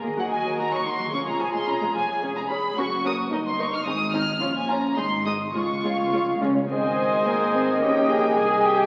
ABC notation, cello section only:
X:1
M:2/4
L:1/8
Q:1/4=109
K:Db
V:1 name="Cello section"
A2 G2 | F4 | A2 G2 | E4 |
D2 E2 | F F2 D | [K:Ab] C2 B, C | D A2 G |]